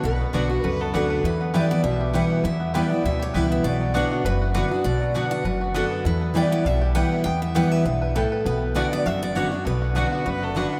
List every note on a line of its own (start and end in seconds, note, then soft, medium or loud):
0.00 0.22 B1 medium
0.00 0.61 B2 medium
0.00 0.20 B3 medium
0.00 0.31 B4 medium
0.04 0.47 F#4 medium
0.04 0.66 B4 medium
0.21 0.61 B3 medium
0.33 0.59 B1 medium
0.33 0.49 D3 medium
0.33 0.43 B3 loud
0.33 0.50 B3 loud
0.33 0.50 D4 loud
0.33 0.44 F#4 loud
0.33 0.66 F#4 medium
0.33 0.48 F#4 loud
0.33 0.63 B4 medium
0.33 0.44 D5 loud
0.33 0.44 F#5 loud
0.50 0.64 D4 soft
0.50 0.63 F#4 medium
0.50 0.91 F#4 medium
0.64 0.89 C#2 medium
0.64 1.21 F#2 loud
0.64 0.90 A4 medium
0.64 0.83 B4 loud
0.64 1.07 B4 medium
0.81 1.21 B3 medium
0.81 0.95 A4 loud
0.94 1.20 D2 medium
0.94 1.23 D3 medium
0.94 1.04 B3 medium
0.94 1.23 B3 medium
0.94 1.24 D4 medium
0.94 1.24 F#4 soft
0.94 1.04 F#4 medium
0.94 1.24 F#4 loud
0.94 1.25 A4 medium
0.94 1.24 B4 medium
0.94 1.04 D5 medium
0.94 1.04 F#5 loud
1.10 1.24 B4 medium
1.23 1.60 E2 medium
1.23 1.82 E2 medium
1.23 1.67 E4 medium
1.23 1.52 B4 medium
1.41 1.70 B3 medium
1.54 1.70 E3 loud
1.54 1.70 G3 medium
1.54 1.64 B3 loud
1.54 1.71 B3 medium
1.54 1.64 E4 loud
1.54 1.69 E4 loud
1.54 1.97 G4 medium
1.54 1.64 B4 loud
1.54 1.70 D5 medium
1.54 1.64 G5 loud
1.70 2.30 B3 medium
1.70 1.84 B3 soft
1.70 1.83 E4 medium
1.70 1.83 D5 loud
1.83 2.21 B1 medium
1.83 2.41 B2 medium
1.83 2.27 E4 medium
1.83 2.15 E5 medium
2.01 2.41 G4 medium
2.13 2.42 E3 medium
2.13 2.43 G3 medium
2.13 2.24 B3 medium
2.13 2.43 B3 medium
2.13 2.24 E4 loud
2.13 2.44 E4 medium
2.13 3.33 B4 medium
2.13 2.24 B4 medium
2.13 2.44 F#5 medium
2.13 2.24 G5 medium
2.30 2.60 B3 medium
2.44 2.80 E2 medium
2.44 3.02 E2 medium
2.44 2.87 E4 medium
2.44 2.72 E5 medium
2.60 2.89 B3 medium
2.74 2.90 E3 medium
2.74 2.91 G3 loud
2.74 2.84 B3 loud
2.74 2.91 B3 loud
2.74 2.84 E4 loud
2.74 2.90 E4 loud
2.74 3.17 G4 medium
2.74 2.84 B4 loud
2.74 3.05 D5 medium
2.74 2.84 G5 loud
2.90 3.50 B3 medium
2.90 3.05 B3 soft
2.90 3.04 E4 medium
3.03 3.30 D2 medium
3.03 3.62 B2 loud
3.03 3.47 E4 medium
3.03 3.22 E5 medium
3.20 3.61 G4 medium
3.20 3.36 C#5 medium
3.34 3.60 C#2 medium
3.34 3.63 E3 medium
3.34 3.64 G3 medium
3.34 3.44 B3 loud
3.34 3.64 B3 medium
3.34 3.44 E4 medium
3.34 3.64 E4 loud
3.34 4.25 B4 medium
3.34 3.44 B4 medium
3.34 3.52 B4 medium
3.34 3.45 G5 loud
3.51 3.94 B3 medium
3.51 3.57 E5 medium
3.64 4.01 B1 medium
3.64 4.22 B2 medium
3.64 4.07 F#4 medium
3.64 3.95 D5 loud
3.81 4.22 F#3 medium
3.94 4.23 D3 medium
3.94 4.04 B3 loud
3.94 4.71 B3 medium
3.94 4.24 B3 loud
3.94 4.24 D4 loud
3.94 4.04 F#4 loud
3.94 4.24 F#4 loud
3.94 4.23 C#5 medium
3.94 4.04 D5 loud
3.94 4.04 F#5 loud
4.11 4.40 F#4 medium
4.24 4.61 F#1 medium
4.24 4.83 F#2 loud
4.24 4.54 B4 medium
4.24 4.53 B4 loud
4.42 4.82 F#4 medium
4.54 4.70 D3 medium
4.54 4.64 B3 medium
4.54 4.71 B3 medium
4.54 4.71 D4 medium
4.54 4.65 F#4 loud
4.54 4.70 F#4 loud
4.54 4.82 B4 loud
4.54 5.45 B4 medium
4.54 4.65 D5 loud
4.54 4.65 F#5 loud
4.71 5.14 B3 medium
4.71 4.85 D4 medium
4.71 4.84 F#4 medium
4.84 5.21 B1 medium
4.84 5.42 B2 medium
4.84 5.28 F#4 medium
4.84 5.12 D5 loud
5.01 5.42 F#3 medium
5.14 5.43 D3 medium
5.14 5.25 B3 loud
5.14 5.91 B3 medium
5.14 5.44 B3 medium
5.14 5.44 D4 medium
5.14 5.25 F#4 loud
5.14 5.44 F#4 medium
5.14 5.25 D5 loud
5.14 5.25 F#5 loud
5.31 5.60 F#4 medium
5.31 5.72 F#5 loud
5.44 5.81 F#1 medium
5.44 6.02 F#2 medium
5.44 5.74 B4 medium
5.61 6.02 F#4 medium
5.74 6.03 D3 medium
5.74 5.85 B3 medium
5.74 6.04 B3 medium
5.74 6.04 D4 medium
5.74 5.85 F#4 loud
5.74 6.04 F#4 loud
5.74 6.06 A4 loud
5.74 6.95 B4 medium
5.74 5.85 D5 medium
5.74 5.85 F#5 loud
5.91 6.21 B3 medium
6.05 6.41 E2 medium
6.05 6.62 E2 loud
6.05 6.48 E4 medium
6.05 6.37 B4 medium
6.21 6.51 B3 medium
6.34 6.63 E3 medium
6.34 6.64 G3 medium
6.34 6.45 B3 medium
6.34 6.64 B3 loud
6.34 6.45 E4 loud
6.34 6.64 E4 loud
6.34 6.78 G4 medium
6.34 6.45 B4 loud
6.34 6.51 D5 medium
6.34 6.45 G5 loud
6.52 7.12 B3 medium
6.52 6.66 D5 loud
6.65 7.02 B1 medium
6.65 7.23 B2 loud
6.65 7.08 E4 medium
6.65 6.94 E5 loud
6.82 7.23 G4 medium
6.95 7.24 E3 medium
6.95 7.24 G3 medium
6.95 7.05 B3 medium
6.95 7.25 B3 medium
6.95 7.05 E4 medium
6.95 7.25 E4 loud
6.95 7.71 B4 medium
6.95 7.05 B4 loud
6.95 7.23 F#5 loud
6.95 7.05 G5 loud
7.12 7.25 B3 medium
7.24 7.62 E2 medium
7.24 7.83 E2 medium
7.24 7.55 B3 medium
7.24 7.40 G5 loud
7.42 7.56 E5 medium
7.55 7.84 E3 loud
7.55 7.84 G3 medium
7.55 7.65 B3 loud
7.55 7.85 B3 medium
7.55 7.84 B3 loud
7.55 7.65 E4 loud
7.55 7.85 E4 loud
7.55 7.65 B4 loud
7.55 7.71 F#5 loud
7.55 7.65 G5 loud
7.71 8.01 B4 medium
7.71 8.17 E5 loud
7.85 8.22 B1 medium
7.85 8.14 G2 loud
7.85 8.45 B3 medium
8.02 8.32 B4 medium
8.15 8.44 A2 medium
8.15 8.26 B3 loud
8.15 8.45 E4 medium
8.15 8.26 E4 medium
8.15 8.46 A4 loud
8.15 8.26 B4 loud
8.15 8.26 G5 loud
8.32 8.76 B4 medium
8.45 8.82 B1 medium
8.45 9.03 B2 medium
8.45 8.92 B3 medium
8.45 8.77 B4 loud
8.75 9.04 D3 loud
8.75 9.04 B3 medium
8.75 8.85 B3 loud
8.75 9.05 D4 loud
8.75 8.86 F#4 loud
8.75 9.05 F#4 loud
8.75 9.95 B4 medium
8.75 8.92 D5 medium
8.75 8.86 D5 loud
8.75 8.86 F#5 loud
8.92 9.22 B3 medium
8.92 9.06 D5 loud
9.06 9.43 F#1 medium
9.06 9.63 F#2 loud
9.06 9.36 F#4 medium
9.06 9.22 E5 loud
9.22 9.65 B3 medium
9.22 9.36 D5 loud
9.35 9.51 D3 loud
9.35 9.46 B3 medium
9.35 9.52 B3 medium
9.35 9.52 D4 medium
9.35 9.51 F#4 medium
9.35 9.46 F#4 loud
9.35 9.50 F#4 medium
9.35 9.67 C#5 loud
9.35 9.46 D5 loud
9.35 9.46 F#5 loud
9.52 9.66 D4 medium
9.52 9.65 F#4 medium
9.52 9.81 F#4 medium
9.65 10.03 B1 medium
9.65 10.24 B2 loud
9.65 10.09 B3 medium
9.65 10.53 B4 medium
9.82 10.23 F#4 medium
9.95 10.24 D3 medium
9.95 10.06 B3 loud
9.95 10.25 B3 medium
9.95 10.25 D4 medium
9.95 10.28 F#4 medium
9.95 10.06 F#4 loud
9.95 10.26 F#4 loud
9.95 10.39 B4 medium
9.95 10.06 D5 loud
9.95 10.06 F#5 loud
10.12 10.41 B3 medium
10.26 10.63 F#1 medium
10.26 10.80 F#2 loud
10.26 10.55 F#4 medium
10.26 10.45 B4 loud
10.43 10.80 B3 medium
10.43 10.58 A4 loud
10.55 10.80 D3 medium
10.55 10.80 B3 medium
10.55 10.66 B3 medium
10.55 10.80 D4 loud
10.55 10.66 F#4 medium
10.55 10.72 F#4 medium
10.55 10.80 F#4 medium
10.55 10.80 B4 medium
10.55 10.66 D5 medium
10.55 10.66 F#5 loud
10.73 10.80 F#4 medium